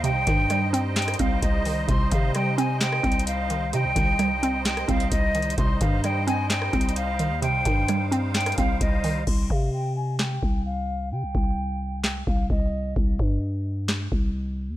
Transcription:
Already playing: 808-style bass D#2, synth pluck D#3 C4, accordion G3 D#4 C5 D#5
0.04 synth pluck C3, flute G5, closed hi-hat
0.10 808-style bass C2
0.27 808-style bass G2, synth pluck D#3, kick, closed hi-hat
0.50 synth pluck G3, cross-stick, closed hi-hat
0.73 synth pluck C4, closed hi-hat
0.96 flute G5, snare, clap, closed hi-hat
1.02 closed hi-hat
1.08 cross-stick, closed hi-hat
1.14 closed hi-hat
1.19 808-style bass C2, synth pluck C4, flute F5, kick, closed hi-hat
1.42 808-style bass C2, flute D#5, kick, closed hi-hat
1.65 synth pluck D#3, open hi-hat
1.88 808-style bass C2, synth pluck C3, flute C6, kick, closed hi-hat
2.12 808-style bass C3, synth pluck D#3, flute F5, kick, closed hi-hat
2.35 synth pluck G3, flute G5, cross-stick, closed hi-hat
2.58 synth pluck C4, flute G#5, closed hi-hat
2.81 flute G5, snare, clap, closed hi-hat
2.92 cross-stick
3.03 808-style bass C2, synth pluck C4, kick, closed hi-hat
3.12 closed hi-hat
3.19 closed hi-hat
3.27 flute F5, closed hi-hat
3.50 synth pluck D#3, closed hi-hat
3.73 synth pluck C3, 808-style bass C3, accordion D#5, flute G5, closed hi-hat
3.85 808-style bass C2
3.96 808-style bass C2, synth pluck D#3, kick, closed hi-hat
4.19 synth pluck G3, cross-stick, closed hi-hat
4.43 synth pluck C4, closed hi-hat
4.66 flute G5, snare, clap, closed hi-hat
4.77 cross-stick, closed hi-hat
4.88 808-style bass C2, synth pluck C4, flute F5, kick, closed hi-hat
5.00 closed hi-hat
5.12 808-style bass C2, flute D#5, kick, closed hi-hat
5.35 synth pluck D#3, closed hi-hat, open hi-hat
5.42 closed hi-hat
5.50 closed hi-hat
5.58 808-style bass C2, synth pluck C3, accordion G3 D#4 D#5, flute C6, kick, closed hi-hat
5.81 808-style bass G2, synth pluck D#3, flute F5, kick, closed hi-hat
6.04 synth pluck G3, flute G5, cross-stick, closed hi-hat
6.27 synth pluck C4, flute G#5, closed hi-hat
6.50 flute G5, snare, clap, closed hi-hat
6.62 cross-stick
6.73 808-style bass C2, synth pluck C4, kick, closed hi-hat
6.81 closed hi-hat
6.89 closed hi-hat
6.96 flute F5, closed hi-hat
7.19 synth pluck D#3, closed hi-hat
7.31 808-style bass D#2
7.42 synth pluck C3, accordion F5, flute G5, closed hi-hat
7.48 808-style bass C2
7.65 808-style bass G2, synth pluck D#3, kick, closed hi-hat
7.88 synth pluck G3, cross-stick, closed hi-hat
8.12 synth pluck C4, closed hi-hat
8.35 flute G5, snare, clap, closed hi-hat
8.41 closed hi-hat
8.46 cross-stick, closed hi-hat
8.52 closed hi-hat
8.58 808-style bass C2, synth pluck C4, flute F5, kick, closed hi-hat
8.81 808-style bass C2, flute D#5, kick, closed hi-hat
9.04 synth pluck D#3, open hi-hat
9.27 808-style bass C2, flute C6, kick, crash
9.50 808-style bass C3, flute F5, kick
9.73 flute G5
9.96 flute G#5
10.19 flute G5, snare, clap
10.43 808-style bass C2, kick
10.66 flute F5
11.12 808-style bass C3, flute G5
11.23 808-style bass C2
11.35 808-style bass C2, kick
12.04 flute G5, snare, clap
12.27 808-style bass C2, flute F5, kick
12.50 808-style bass C2, flute D#5, kick
12.96 808-style bass C2, kick
13.19 808-style bass G2, kick
13.89 snare, clap
14.12 808-style bass C2, kick
14.69 808-style bass D#2

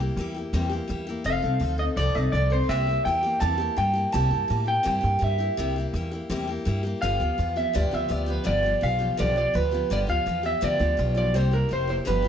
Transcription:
0.00 steel-string acoustic guitar A#3 E4 G4
0.16 upright bass E2, steel-string acoustic guitar G3 A#3 E4
0.21 steel-string acoustic guitar G4
0.34 steel-string acoustic guitar A#3 E4 G4
0.53 upright bass E2, steel-string acoustic guitar C3 G3 A#3 E4 G4
0.69 steel-string acoustic guitar A#3 E4 G4
0.88 upright bass E2, steel-string acoustic guitar G3 A#3 E4 G4
1.07 steel-string acoustic guitar A#3 E4 G4
1.24 upright bass F1, steel-string acoustic guitar F3 C4 D#4 A4, clean electric guitar F5
1.42 upright bass C2, steel-string acoustic guitar C4 D#4 A4
1.60 upright bass D2, steel-string acoustic guitar F3 C4 D#4
1.64 steel-string acoustic guitar A4
1.78 steel-string acoustic guitar C4 D#4 A4, clean electric guitar D#5
1.97 upright bass C2, steel-string acoustic guitar F3 C4 D#4 A4, clean electric guitar D5
2.14 upright bass C2, steel-string acoustic guitar C4 D#4 A4, clean electric guitar D#5
2.32 upright bass C2, steel-string acoustic guitar F3 C4 D#4 A4, clean electric guitar D5
2.50 steel-string acoustic guitar C4 D#4 A4, clean electric guitar C5
2.69 upright bass C2, steel-string acoustic guitar C3 G3 A#3 E4 G4, clean electric guitar E5
2.87 steel-string acoustic guitar A#3 E4 G4
3.05 upright bass E2, steel-string acoustic guitar G3 A#3 E4 G4, clean electric guitar G5
3.23 steel-string acoustic guitar A#3 E4 G4
3.40 upright bass E2, steel-string acoustic guitar C3 G3 A#3 E4 G4, clean electric guitar A5
3.58 steel-string acoustic guitar A#3 E4 G4
3.76 upright bass G2, steel-string acoustic guitar G3 A#3 E4 G4, clean electric guitar G5
3.93 steel-string acoustic guitar A#3 E4 G4
4.12 upright bass C2, steel-string acoustic guitar C3 G3 A#3 E4 G4, clean electric guitar A5
4.31 upright bass G2, steel-string acoustic guitar A#3 E4 G4
4.48 upright bass A2, steel-string acoustic guitar G3 A#3 E4 G4
4.66 steel-string acoustic guitar A#3 E4 G4, clean electric guitar G5
4.83 upright bass G2, steel-string acoustic guitar C3 G3 A#3 E4 G4
4.87 clean electric guitar G5
5.01 upright bass G2, steel-string acoustic guitar E4 G4
5.05 steel-string acoustic guitar A#3
5.19 upright bass G2, steel-string acoustic guitar G3 A#3 E4 G4
5.24 clean electric guitar E5
5.38 steel-string acoustic guitar A#3 E4 G4
5.57 upright bass C2, steel-string acoustic guitar C3 G3 A#3 E4 G4
5.76 steel-string acoustic guitar A#3 E4 G4
5.93 upright bass E2, steel-string acoustic guitar G3 A#3 E4 G4
6.11 steel-string acoustic guitar A#3 E4 G4
6.30 upright bass E2, steel-string acoustic guitar C3 G3 A#3 E4 G4
6.47 steel-string acoustic guitar A#3 E4 G4
6.65 upright bass G2, steel-string acoustic guitar G3 A#3 E4 G4
6.83 steel-string acoustic guitar A#3 E4 G4
7.02 upright bass G1, steel-string acoustic guitar G2 D3 F3 B3 F4 G4, clean electric guitar F5
7.20 upright bass D2, steel-string acoustic guitar F3 B3 F4 G4
7.38 upright bass E2, steel-string acoustic guitar F3 B3 F4 G4
7.56 steel-string acoustic guitar F3 B3 F4 G4, clean electric guitar E5
7.73 upright bass D2, steel-string acoustic guitar G2 D3 F3 B3 F4 G4, clean electric guitar D5
7.91 upright bass D2, steel-string acoustic guitar F3 B3 F4 G4, clean electric guitar E5
8.08 upright bass D2, steel-string acoustic guitar F3 B3 F4 G4, clean electric guitar D5
8.26 steel-string acoustic guitar F3 B3 F4 G4, clean electric guitar B4
8.44 upright bass G1, steel-string acoustic guitar G2 D3 F3 B3 F4 G4, clean electric guitar D5
8.63 steel-string acoustic guitar F3 B3 F4 G4
8.81 upright bass B1, steel-string acoustic guitar F3 B3 F4 G4, clean electric guitar F5
8.99 steel-string acoustic guitar F3 B3 F4 G4
9.17 upright bass B1, steel-string acoustic guitar G2 D3 F3 B3 F4 G4, clean electric guitar D5
9.36 steel-string acoustic guitar F3 B3 F4 G4, clean electric guitar D5
9.54 upright bass D2, steel-string acoustic guitar F3 B3 F4 G4, clean electric guitar B4
9.71 steel-string acoustic guitar F3 B3 F4 G4
9.90 upright bass G1, steel-string acoustic guitar G2 D3 F3 B3 F4 G4, clean electric guitar D5
10.07 upright bass D2, steel-string acoustic guitar F3 B3 F4 G4, clean electric guitar F5
10.26 upright bass E2, steel-string acoustic guitar F3 B3 F4 G4
10.43 steel-string acoustic guitar F3 B3 F4 G4, clean electric guitar E5
10.61 upright bass D2, steel-string acoustic guitar G2 D3 F3 B3 F4 G4, clean electric guitar D5
10.79 upright bass D2, steel-string acoustic guitar F3 B3 F4 G4
10.97 upright bass B1, steel-string acoustic guitar F3 B3 F4 G4
11.15 steel-string acoustic guitar F3 B3 F4 G4, clean electric guitar D5
11.34 upright bass C2, steel-string acoustic guitar C3 G3 A#3 E4 G4, clean electric guitar C5
11.51 steel-string acoustic guitar A#3 E4 G4, clean electric guitar A#4
11.69 upright bass F1, steel-string acoustic guitar G3 A#3 E4 G4
11.73 clean electric guitar C5
11.87 steel-string acoustic guitar A#3 E4 G4, clean electric guitar C5
12.05 upright bass G1, steel-string acoustic guitar G2 D3 F3 B3 F4 G4, clean electric guitar B4
12.22 steel-string acoustic guitar B3 F4 G4

